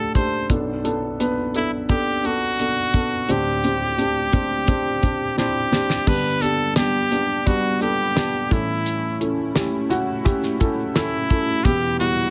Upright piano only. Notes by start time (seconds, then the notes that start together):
Already playing: D2 A2 A3 D4 G4 F#5
0.15 A3 D4 G4
0.50 B1 F#2 B3 D4 A4
0.84 B3 D4 A4
1.20 B3 D4 B4
1.55 B3 D4 A4
1.89 B3 D4 A4
2.24 B3 D4 A4
2.59 B3 D4 A4
2.94 B3 D4 A4
3.29 D2 A2 C4 D4 G4
3.64 C4 D4 G4
3.98 C4 D4 G4
4.33 C4 D4 G4
4.68 C4 D4 G4
5.02 C4 D4 G4
5.37 C4 D4 E4
5.72 C4 D4 G4
6.07 G2 D3 B3 D4 G4
6.42 B3 D4 G4
6.77 B3 D4 G4
7.11 B3 D4 G4
7.46 G3 B3 D4
7.80 B3 D4 A4
8.16 B3 D4 G4
8.50 A2 E3 C#4 E4 A4
9.20 C#4 E4 A4
9.55 C#4 E4 G4
9.89 C#4 E4 F#4
10.24 C#4 E4 G4
10.60 C#4 E4 A4
10.95 C#4 E4 A4
11.30 C#4 E4 A4
11.66 E2 B2 B3 E4 G4
12.00 G3 B3 E4